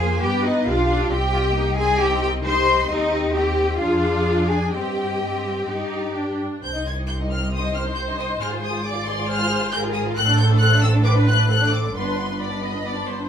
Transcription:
Already playing: double bass section F2, cello section G#4, viola section C5, violin section F5 G#5
0.00 viola section A#3
0.22 double bass section G2, viola section B3 B4, cello section G4, violin section D5 G5
0.44 cello section D#4, violin section D#5
0.66 double bass section B1, viola section D4 G4, cello section F4, violin section D5 F5
0.89 viola section D4
1.10 double bass section C2, viola section C4 G4, cello section G4, violin section D#5 G5
1.33 viola section F4
1.55 viola section A#3 D#4
1.77 viola section C4, cello section G#4, violin section G#5
1.99 viola section D#4, cello section G4, violin section G5
2.22 cello section G4, violin section G5
2.44 viola section D#4 G4, cello section C5, violin section D#5 C6
2.89 double bass section D#2, viola section C4 G4, cello section D#4, violin section D#5
3.35 viola section C4 G4, cello section G4, violin section D#5 G5
3.79 double bass section F2, viola section D4 G#4, cello section F4, violin section D5 F5
4.49 cello section G#4, violin section G#5
4.72 double bass section G2, viola section C4 G4, cello section G4, violin section D#5 G5
5.21 viola section C4
5.68 double bass section G2, viola section D#4, violin section D5
6.16 viola section D4
6.63 double bass section C2, cello section C3, violin section C4 C5 G6
6.75 violin section D#4 D#5
6.86 violin section C4 C5 G#6
6.96 violin section D#4 D#5
7.07 violin section C4 C5 G6
7.19 violin section D#4 D#5
7.30 violin section C4 C5 F6
7.41 violin section D#4 D#5
7.52 violin section C4 C5 D#6, viola section C5
7.63 violin section D#4 D#5
7.75 violin section C4 C5 F6
7.85 violin section D#4 D#5
7.96 violin section C4 C5 G6
8.07 violin section D#4 D#5
8.18 violin section C4 C5 D#6
8.29 violin section D#4 D#5
8.41 double bass section G#1, cello section G#2, violin section G#4 C5 F6
8.52 violin section F4 G#4
8.62 violin section G#4 C5 D#6
8.74 violin section F4 G#4
8.84 violin section G#4 C5 D6, viola section D5
8.94 violin section F4 G#4
9.06 violin section G#4 C5 C6
9.18 violin section F4 G#4
9.29 violin section G#4 C5 F6, viola section C5
9.38 violin section F4 G#4
9.50 violin section G#4 C5
9.60 violin section F4 G#4
9.71 violin section G#4 C5 G6, viola section A#4
9.82 violin section F4 G#4
9.93 violin section G#4 C5 D#6
10.05 violin section F4 G#4
10.16 double bass section A1, cello section A2, violin section C4 C5 F#6, viola section A4
10.29 violin section D4 D5
10.38 violin section C4 C5 G6
10.50 violin section D4 D5
10.60 violin section C4 C5 F#6
10.73 violin section D4 D5
10.82 violin section C4 C5 E6
10.94 violin section D4 D5
11.05 violin section C4 C5 D6, viola section B4
11.15 violin section D4 D5
11.27 violin section C4 C5 F#6
11.37 violin section D4 D5
11.48 violin section C4 C5 F#6, viola section A4
11.60 violin section D4 D5
11.72 violin section C4 C5 D6
11.84 violin section D4 D5
11.94 double bass section G1, cello section G2, violin section B3 D5 C6, viola section B4
12.06 violin section D4 B4
12.18 violin section B3 D5
12.28 violin section D4 B4
12.40 violin section B3 D5 B5, viola section D5
12.51 violin section D4 B4
12.62 violin section B3 D5, viola section D#5
12.73 violin section D4 B4
12.85 violin section B3 D5, viola section D5
12.95 violin section D4 B4
13.07 violin section B3 D5, viola section C5
13.19 violin section D4 B4

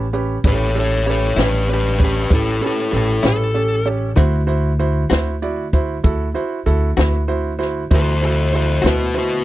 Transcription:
Already playing: upright bass A1
0.13 upright piano C#4 G4 B4, closed hi-hat
0.44 upright bass A1, upright piano C#4 G4 B4, lead electric guitar A4, kick, closed hi-hat
0.48 lead electric guitar C#5
0.75 upright piano C#4 G4 A4, closed hi-hat
0.79 lead electric guitar A4 C#5
1.06 upright piano C#4 G4 B4, lead electric guitar A4, closed hi-hat
1.11 lead electric guitar C#5
1.36 upright bass A1, clean electric guitar A2 G3 C#4 E4, upright piano C#4 G4 B4, snare, closed hi-hat
1.41 lead electric guitar G4 B4
1.68 upright piano C#4 G4 B4, closed hi-hat
1.74 lead electric guitar G4 B4
1.98 upright piano C#4 G4 B4, kick, closed hi-hat
2.04 lead electric guitar G4 B4
2.30 upright bass A1, upright piano C#4 G4 B4, lead electric guitar E4, kick, closed hi-hat
2.35 lead electric guitar A4
2.61 upright piano C#4 G4 B4, closed hi-hat
2.66 lead electric guitar E4 A4
2.91 upright bass A1, upright piano C#4 G4 B4, closed hi-hat
2.96 lead electric guitar E4 A4
3.23 upright bass A1, clean electric guitar A2 G3 C#4 E4, upright piano C#4 G4 B4, snare, closed hi-hat
3.28 lead electric guitar A4
3.54 upright piano C#4 G4 A4, closed hi-hat
3.85 upright piano C#4 G4 C#5, closed hi-hat
4.16 upright bass D2, clean electric guitar D3 A3 C4 F#4, upright piano E4 F#4 C5, kick, closed hi-hat
4.47 upright piano E4 F#4 C5, closed hi-hat
4.79 upright piano E4 F#4 C5, closed hi-hat
5.10 upright bass D2, clean electric guitar D3 A3 C4 F#4, upright piano E4 F#4 C5, snare, closed hi-hat
5.42 upright piano E4 F#4 D5, closed hi-hat
5.73 upright piano E4 F#4 C5, kick, closed hi-hat
6.04 upright bass D2, upright piano E4 F#4 A4, kick, closed hi-hat
6.34 upright piano E4 F#4 C5, closed hi-hat
6.66 upright bass D2, upright piano E4 F#4 A4, closed hi-hat
6.97 upright bass D2, clean electric guitar D3 A3 C4 F#4, upright piano E4 F#4 B4, snare, closed hi-hat
7.28 upright piano E4 F#4 C5, closed hi-hat
7.59 upright piano E4 F#4 C5, snare, closed hi-hat
7.91 upright bass D2, upright piano E4 F#4 C5, kick, closed hi-hat
7.95 lead electric guitar A4 C5
8.22 upright piano E4 F#4 C5, lead electric guitar A4, closed hi-hat
8.26 lead electric guitar C5
8.52 upright piano E4 F#4 C5, lead electric guitar A4 C5, closed hi-hat
8.82 upright bass D2, clean electric guitar D3 A3 C4 F#4, upright piano E4 F#4 C5, closed hi-hat
8.86 lead electric guitar F#4 B4, snare
9.14 upright piano E4 F#4 C5, lead electric guitar F#4, closed hi-hat
9.19 lead electric guitar B4

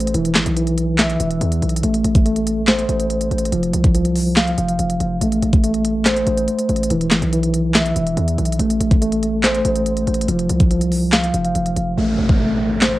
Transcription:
Already playing: 808-style bass A1, tine electric piano A3 C5
0.00 closed hi-hat
0.07 closed hi-hat
0.14 808-style bass E1, tine electric piano E3, closed hi-hat
0.25 closed hi-hat
0.35 808-style bass G#1, snare, clap, closed hi-hat
0.46 808-style bass B1, closed hi-hat
0.57 tine electric piano E3, closed hi-hat
0.67 closed hi-hat
0.78 closed hi-hat
0.98 tine electric piano E5, snare, clap, closed hi-hat
1.10 closed hi-hat
1.20 808-style bass E1, closed hi-hat
1.31 closed hi-hat
1.41 808-style bass E2, closed hi-hat
1.52 closed hi-hat
1.62 808-style bass B1, closed hi-hat
1.69 closed hi-hat
1.76 closed hi-hat
1.83 808-style bass A1, tine electric piano A3, closed hi-hat
1.94 closed hi-hat
2.05 808-style bass A1, closed hi-hat
2.15 kick, closed hi-hat
2.26 tine electric piano A3, closed hi-hat
2.36 closed hi-hat
2.47 closed hi-hat
2.67 tine electric piano C5, snare, clap, closed hi-hat
2.79 closed hi-hat
2.89 808-style bass A1, closed hi-hat
3.00 closed hi-hat
3.10 closed hi-hat
3.21 closed hi-hat
3.31 808-style bass A1, closed hi-hat
3.38 closed hi-hat
3.45 closed hi-hat
3.52 808-style bass F1, tine electric piano F3, closed hi-hat
3.63 closed hi-hat
3.73 808-style bass C2, closed hi-hat
3.84 kick, closed hi-hat
3.94 tine electric piano F3, closed hi-hat
4.05 closed hi-hat
4.15 open hi-hat
4.36 tine electric piano F5, snare, clap, closed hi-hat
4.47 closed hi-hat
4.58 808-style bass F1, closed hi-hat
4.68 closed hi-hat
4.79 808-style bass F1, closed hi-hat
4.90 closed hi-hat
5.00 808-style bass F1, closed hi-hat
5.21 808-style bass A1, tine electric piano A3, closed hi-hat
5.32 closed hi-hat
5.42 808-style bass A1, closed hi-hat
5.53 kick, closed hi-hat
5.64 tine electric piano A3, closed hi-hat
5.74 closed hi-hat
5.85 closed hi-hat
6.05 tine electric piano C5, snare, clap, closed hi-hat
6.16 closed hi-hat
6.27 808-style bass A1, closed hi-hat
6.38 closed hi-hat
6.48 closed hi-hat
6.59 closed hi-hat
6.69 808-style bass A1, closed hi-hat
6.76 closed hi-hat
6.83 closed hi-hat
6.90 808-style bass E1, tine electric piano E3, closed hi-hat
7.01 closed hi-hat
7.11 808-style bass G#1, snare, clap, closed hi-hat
7.22 808-style bass B1, closed hi-hat
7.33 tine electric piano E3, closed hi-hat
7.43 closed hi-hat
7.54 closed hi-hat
7.74 tine electric piano E5, snare, clap, closed hi-hat
7.86 closed hi-hat
7.96 808-style bass E1, closed hi-hat
8.07 closed hi-hat
8.17 808-style bass E2, closed hi-hat
8.28 closed hi-hat
8.38 808-style bass B1, closed hi-hat
8.45 closed hi-hat
8.52 closed hi-hat
8.59 808-style bass A1, tine electric piano A3, closed hi-hat
8.70 closed hi-hat
8.80 808-style bass A1, closed hi-hat
8.91 kick, closed hi-hat
9.02 tine electric piano A3, closed hi-hat
9.12 closed hi-hat
9.23 closed hi-hat
9.43 tine electric piano C5, snare, clap, closed hi-hat
9.55 closed hi-hat
9.65 808-style bass A1, closed hi-hat
9.76 closed hi-hat
9.86 closed hi-hat
9.97 closed hi-hat
10.07 808-style bass A1, closed hi-hat
10.14 closed hi-hat
10.21 closed hi-hat
10.28 808-style bass F1, tine electric piano F3, closed hi-hat
10.39 closed hi-hat
10.49 808-style bass C2, closed hi-hat
10.60 kick, closed hi-hat
10.71 tine electric piano F3, closed hi-hat
10.81 closed hi-hat
10.92 open hi-hat
11.12 tine electric piano F5, snare, clap, closed hi-hat
11.24 closed hi-hat
11.34 808-style bass F1, closed hi-hat
11.45 closed hi-hat
11.55 808-style bass F1, closed hi-hat
11.66 closed hi-hat
11.76 808-style bass F1, closed hi-hat
11.97 808-style bass A1, tine electric piano A3, downlifter
12.19 808-style bass A1
12.29 kick
12.40 tine electric piano A3
12.81 tine electric piano C5, snare, clap

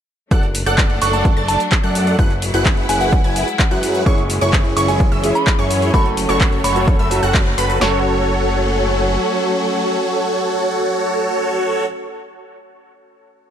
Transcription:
0.31 analog synth bass F#1, string section F#3 A3 D4, supersaw synth A4 D5 F#5, synth pluck F#6, kick, closed hi-hat, cabasa
0.43 closed hi-hat
0.55 open hi-hat, cabasa
0.66 analog synth bass F#1, supersaw synth A4 D5 F#5, synth pluck F#6, closed hi-hat, cabasa
0.78 kick, clap, closed hi-hat, cabasa
0.90 closed hi-hat
1.01 analog synth bass F#1, supersaw synth A4 D5 F#5, synth bell C#6, synth pluck F#6, open hi-hat, cabasa
1.13 synth bell A5, closed hi-hat, cabasa
1.25 kick, closed hi-hat, cabasa
1.37 analog synth bass F#1, supersaw synth A4 D5 A5, synth pluck A6, closed hi-hat
1.48 synth bell A5, open hi-hat, cabasa
1.60 closed hi-hat, cabasa
1.72 kick, clap, closed hi-hat, cabasa
1.84 analog synth bass F#2, supersaw synth A4 D5 F#5, synth pluck F#6, closed hi-hat
1.95 open hi-hat, cabasa
2.07 closed hi-hat, cabasa
2.19 analog synth bass F#1, string section G#3 E4, supersaw synth E4 F#4 G#4 B4 F#5, synth pluck F#6, kick, closed hi-hat, cabasa
2.30 closed hi-hat
2.42 open hi-hat, cabasa
2.54 analog synth bass F#1, supersaw synth E4 F#4 G#4 B4 F#5, synth pluck F#6, closed hi-hat, cabasa
2.66 kick, clap, closed hi-hat, cabasa
2.77 closed hi-hat
2.89 analog synth bass F#1, supersaw synth E4 F#4 G#4 B4 F#5, synth bell G#5, synth pluck F#6, open hi-hat, cabasa
3.01 synth bell F#5, closed hi-hat, cabasa
3.12 kick, closed hi-hat, cabasa
3.24 analog synth bass F#1, supersaw synth E4 F#4 G#4 B4 G#5, synth pluck G#6, closed hi-hat
3.36 open hi-hat, cabasa
3.48 closed hi-hat, cabasa
3.59 kick, clap, closed hi-hat, cabasa
3.71 analog synth bass F#2, supersaw synth E4 F#4 G#4 B4 F#5, synth pluck F#6, closed hi-hat
3.83 open hi-hat, cabasa
3.95 closed hi-hat, cabasa
4.05 analog synth bass F#1, string section E3 C#4, felt piano G#3 C#4 E4 G#4, supersaw synth E4 G#4 C#5, synth pluck C#6, kick, closed hi-hat, cabasa
4.18 closed hi-hat
4.30 open hi-hat, cabasa
4.41 analog synth bass F#1, supersaw synth E4 G#4 C#5, synth pluck C#6, closed hi-hat, cabasa
4.53 kick, clap, closed hi-hat, cabasa
4.65 closed hi-hat
4.77 analog synth bass F#1, supersaw synth E4 G#4 C#5, synth pluck C#6, synth bell C#6, open hi-hat, cabasa
4.88 felt piano G#3 C#4 E4 G#4, synth bell G#5, closed hi-hat, cabasa
5.00 kick, closed hi-hat, cabasa
5.12 analog synth bass F#1, supersaw synth E4 G#4 E5, synth pluck E6, closed hi-hat
5.22 felt piano G#3 C#4 E4 G#4, open hi-hat, cabasa
5.35 synth bell B5, closed hi-hat, cabasa
5.47 kick, clap, closed hi-hat, cabasa
5.59 analog synth bass F#2, supersaw synth E4 G#4 C#5, synth pluck C#6, closed hi-hat
5.70 open hi-hat, cabasa
5.82 closed hi-hat, cabasa
5.93 analog synth bass F#1, string section F#3 A3, felt piano A3 C#4 F#4 A4, supersaw synth F#4 A4 C#5, synth bell B5, synth pluck C#6, kick, closed hi-hat, cabasa
6.06 closed hi-hat
6.17 open hi-hat, cabasa
6.29 analog synth bass F#1, supersaw synth F#4 A4 C#5, synth pluck C#6, closed hi-hat, cabasa
6.41 kick, clap, closed hi-hat, cabasa
6.52 closed hi-hat
6.64 analog synth bass F#1, supersaw synth F#4 A4 C#5, synth bell B5, synth pluck C#6, open hi-hat, cabasa
6.75 felt piano A3 C#4 F#4 A4, closed hi-hat, cabasa
6.88 kick, closed hi-hat, cabasa
6.99 analog synth bass F#1, supersaw synth F#4 A4 E5, synth pluck E6, closed hi-hat
7.10 felt piano A3 C#4 F#4 A4, open hi-hat, cabasa
7.23 analog synth bass F#1, supersaw synth F#4 A4 F#5, synth pluck F#6, closed hi-hat, cabasa
7.34 kick, clap, closed hi-hat, cabasa
7.46 closed hi-hat
7.58 analog synth bass F#1, supersaw synth F#4 A4 B4, synth pluck B5, open hi-hat, cabasa
7.70 closed hi-hat, cabasa
7.79 analog synth bass F#1, string section F#3 A3 C#4, felt piano A3 C#4 F#4 A4, supersaw synth F#4 A4 C#5, synth pluck C#6, snare

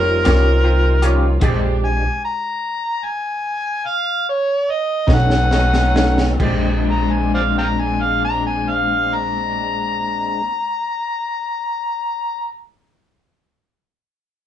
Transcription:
Already playing: upright bass F1, string section F3 C4 F4, tonewheel organ G3 A#3 D#4 F4, grand piano F4 G4 A#4 C#5, harmonica A#4
0.25 upright bass C2, clean electric guitar C#4 F4 G4, grand piano F4 G4 A#4 C#5, snare, closed hi-hat
0.64 grand piano F4 G4 A#4 C5
1.02 clean electric guitar C#4 F4 G4, grand piano F4 G4 A#4 C#5, closed hi-hat
1.40 upright bass A#1, clean electric guitar A#2 G#3 D4 G4, string section G#3 D4 G4, tonewheel organ G#3 C4 D4 G4, grand piano G4 G#4 C5 D5, kick, closed hi-hat, crash
1.85 harmonica G#5
2.25 harmonica A#5
3.05 harmonica G#5
3.87 harmonica F5
4.29 harmonica C#5
4.71 harmonica D#5
5.07 upright bass B1, string section A3 C#4 D#4, clean electric guitar A3 C#4 D#4, tonewheel organ B3 C#4 D#4 A4, grand piano F#4 A4 C#5 D#5, kick, snare
5.14 harmonica F#5
5.30 snare
5.51 grand piano F#4 A4 C#5 D#5, snare
5.74 snare
5.95 clean electric guitar A3 C#4 D#4, grand piano F#4 A4 C#5 F5, snare
6.18 snare
6.34 clean electric guitar A#2
6.39 upright bass A#1, string section G#3 C4 D4, tonewheel organ G#3 C4 D4, clean electric guitar G#3, grand piano G4 G#4 C5, kick, crash
6.43 clean electric guitar D4, grand piano D5
6.91 harmonica A#5
7.13 harmonica G#5
7.34 harmonica C5 D5 F5
7.58 harmonica F5 G5 A#5
7.80 harmonica G#5
8.03 harmonica F5
8.25 harmonica A#5
8.47 harmonica G#5
8.69 harmonica F5
9.15 harmonica A#5

